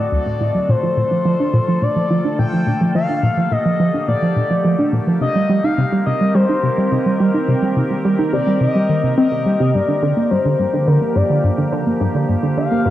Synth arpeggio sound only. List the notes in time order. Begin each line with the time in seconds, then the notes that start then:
0.12 D2
0.26 A2
0.41 A2
0.55 F#3
0.69 A#2
0.83 F3
0.97 A#2
1.11 F3
1.25 F3
1.40 D4
1.54 A#2
1.68 F3
1.82 A#2
1.96 F3
2.10 F3
2.25 D4
2.39 A#2
2.53 F3
2.67 A#2
2.81 F3
2.95 F3
3.09 D4
3.23 A#2
3.37 F3
3.52 A#2
3.66 F3
3.80 F3
3.94 D4
4.08 A#2
4.22 F3
4.36 A#2
4.51 F3
4.65 F3
4.79 D4
4.93 A#2
5.07 F3
5.21 C3
5.36 G3
5.49 G3
5.64 D#4
5.78 C3
5.92 G3
6.07 C3
6.21 G3
6.35 G3
6.49 D#4
6.63 C3
6.78 G3
6.92 C3
7.06 G3
7.20 G3
7.34 D#4
7.48 C3
7.62 G3
7.77 C3
7.91 G3
8.05 G3
8.19 D#4
8.33 C3
8.47 G3
8.61 C3
8.75 G3
8.89 D#3
9.04 C3
9.18 C4
9.32 C3
9.46 G3
9.60 C3
9.75 G2
9.88 D3
10.02 D3
10.17 A#3
10.31 G2
10.45 D3
10.59 G2
10.74 D3
10.88 D3
11.02 A#3
11.16 G2
11.30 D3
11.44 G2
11.58 D3
11.72 D3
11.87 A#3
12.01 G2
12.15 D3
12.29 G2
12.43 D3
12.57 D3
12.72 A#3
12.86 G2